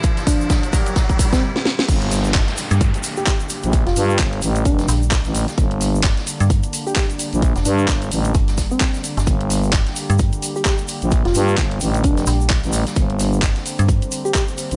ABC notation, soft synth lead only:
X:1
M:4/4
L:1/16
Q:"Swing 16ths" 1/4=130
K:Gdor
V:1 name="Soft synth lead"
z2 D3 z6 C z4 | z8 z3 G G z3 | z F3 z4 D3 z4 z | z8 z3 G G z3 |
z2 D3 z6 C3 z2 | z8 z3 G G z3 | z F3 z4 D3 z4 z | z8 z3 G G z3 |]